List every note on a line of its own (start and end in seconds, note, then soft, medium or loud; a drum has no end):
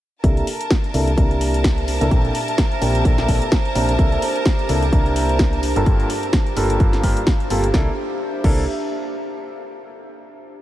0.24 0.43 C2 medium
0.24 0.45 C3 medium
0.24 0.45 A#3 medium
0.24 0.45 D4 medium
0.24 7.73 D4 medium
0.24 0.45 E4 medium
0.24 0.45 A4 medium
0.24 7.75 A#4 medium
0.24 7.75 A5 medium
0.24 kick loud
0.24 closed hi-hat medium
0.37 7.74 G4 medium
0.37 closed hi-hat soft
0.47 open hi-hat loud
0.61 closed hi-hat soft
0.70 kick loud
0.70 snare loud
0.70 closed hi-hat soft
0.84 closed hi-hat soft
0.94 1.16 C2 medium
0.94 1.08 C3 medium
0.94 1.08 A#3 medium
0.94 1.08 D4 medium
0.94 1.08 E4 medium
0.94 1.08 A4 medium
0.94 5.63 E5 medium
0.94 open hi-hat medium
1.08 7.74 C5 medium
1.08 closed hi-hat medium
1.18 1.99 C2 medium
1.18 1.98 C3 medium
1.18 1.98 A#3 medium
1.18 1.98 D4 medium
1.18 1.98 E4 medium
1.18 1.98 A#4 medium
1.18 kick loud
1.18 closed hi-hat medium
1.31 closed hi-hat soft
1.41 open hi-hat loud
1.54 closed hi-hat medium
1.64 kick loud
1.64 snare loud
1.64 closed hi-hat medium
1.78 closed hi-hat soft
1.88 open hi-hat loud
2.01 2.09 C2 medium
2.01 2.10 A#2 medium
2.01 2.10 A#3 medium
2.01 2.10 D4 medium
2.01 2.10 E4 medium
2.01 2.10 A4 medium
2.01 closed hi-hat soft
2.11 2.30 A#1 medium
2.11 2.32 A#2 medium
2.11 2.32 A#3 medium
2.11 2.32 C4 medium
2.11 2.32 D4 medium
2.11 2.32 A4 loud
2.11 kick loud
2.11 closed hi-hat soft
2.25 closed hi-hat soft
2.35 open hi-hat loud
2.48 closed hi-hat soft
2.58 kick loud
2.58 snare loud
2.58 closed hi-hat soft
2.72 closed hi-hat soft
2.82 3.03 A#1 medium
2.82 3.03 A#2 medium
2.82 3.03 A#3 medium
2.82 3.03 C4 medium
2.82 3.03 D4 medium
2.82 3.03 G4 medium
2.82 open hi-hat loud
2.95 closed hi-hat medium
3.05 3.27 A#1 medium
3.05 3.26 A#2 medium
3.05 3.26 A#3 medium
3.05 3.26 C4 medium
3.05 3.26 D4 medium
3.05 3.26 A4 medium
3.05 kick loud
3.05 closed hi-hat soft
3.18 snare soft
3.18 closed hi-hat soft
3.28 3.40 A#1 medium
3.28 3.43 A#2 medium
3.28 3.43 A#3 medium
3.28 3.43 C4 medium
3.28 3.43 D4 medium
3.28 3.43 A4 medium
3.28 kick medium
3.28 open hi-hat loud
3.42 closed hi-hat soft
3.52 kick loud
3.52 snare loud
3.52 closed hi-hat soft
3.65 closed hi-hat soft
3.75 3.97 A#1 loud
3.75 3.90 C3 medium
3.75 3.90 A#3 medium
3.75 3.90 C4 medium
3.75 3.90 D4 medium
3.75 3.90 A#4 medium
3.75 open hi-hat loud
3.89 closed hi-hat soft
3.99 4.18 C2 medium
3.99 4.20 C3 medium
3.99 4.20 A#3 medium
3.99 4.20 D4 medium
3.99 4.20 E4 medium
3.99 4.20 A4 medium
3.99 kick loud
3.99 closed hi-hat soft
4.12 closed hi-hat soft
4.22 open hi-hat loud
4.36 closed hi-hat soft
4.46 kick loud
4.46 snare loud
4.46 closed hi-hat soft
4.59 closed hi-hat soft
4.69 4.91 C2 medium
4.69 4.83 C3 medium
4.69 4.83 A#3 medium
4.69 4.83 D4 medium
4.69 4.83 E4 medium
4.69 4.83 A4 medium
4.69 open hi-hat loud
4.83 closed hi-hat medium
4.93 5.74 C2 loud
4.93 5.62 C3 medium
4.93 5.62 A#3 medium
4.93 5.62 D4 medium
4.93 5.62 E4 medium
4.93 5.62 A#4 medium
4.93 kick loud
4.93 closed hi-hat soft
5.06 closed hi-hat soft
5.16 open hi-hat loud
5.29 closed hi-hat soft
5.39 kick loud
5.39 snare loud
5.39 closed hi-hat soft
5.53 closed hi-hat soft
5.63 open hi-hat loud
5.76 5.84 G1 loud
5.76 5.85 G2 medium
5.76 5.85 A#3 medium
5.76 5.85 F4 medium
5.76 5.85 G4 medium
5.76 5.85 A4 medium
5.76 closed hi-hat soft
5.86 6.05 G1 loud
5.86 6.07 G2 medium
5.86 6.07 A#3 medium
5.86 6.07 F4 medium
5.86 6.07 G4 medium
5.86 6.07 A4 loud
5.86 kick loud
5.86 closed hi-hat soft
6.00 closed hi-hat soft
6.10 open hi-hat loud
6.23 closed hi-hat soft
6.33 kick loud
6.33 snare loud
6.33 closed hi-hat soft
6.47 7.74 F5 medium
6.47 closed hi-hat soft
6.57 6.78 G1 loud
6.57 6.78 G2 medium
6.57 6.78 A#3 medium
6.57 6.78 F4 medium
6.57 6.78 G4 medium
6.57 6.78 A4 medium
6.57 open hi-hat loud
6.70 closed hi-hat medium
6.80 7.02 G1 loud
6.80 7.01 G2 medium
6.80 7.01 A#3 medium
6.80 7.01 F4 medium
6.80 7.01 G4 medium
6.80 7.01 A4 medium
6.80 kick loud
6.80 closed hi-hat soft
6.93 snare soft
6.93 closed hi-hat soft
7.03 7.15 G1 medium
7.03 7.18 G2 medium
7.03 7.18 A#3 medium
7.03 7.18 F4 medium
7.03 7.18 G4 medium
7.03 7.18 A#4 loud
7.03 kick medium
7.03 open hi-hat loud
7.17 closed hi-hat soft
7.27 kick loud
7.27 snare loud
7.27 closed hi-hat soft
7.40 closed hi-hat soft
7.50 7.72 G1 loud
7.50 7.65 C3 medium
7.50 7.65 A#3 medium
7.50 7.65 F4 medium
7.50 7.65 G4 medium
7.50 7.65 A4 medium
7.50 open hi-hat loud
7.64 closed hi-hat soft
7.74 7.88 C2 loud
7.74 7.88 A#3 medium
7.74 7.88 D4 medium
7.74 9.57 D4 medium
7.74 7.88 E4 medium
7.74 7.88 A4 medium
7.74 kick loud
7.74 snare medium
7.82 9.57 G4 medium
7.89 9.57 C5 medium
7.95 9.57 E5 medium
8.44 8.66 C2 loud
8.44 8.62 A#3 medium
8.44 8.62 D4 medium
8.44 8.62 E4 medium
8.44 8.62 A4 medium
8.44 kick loud
8.44 crash medium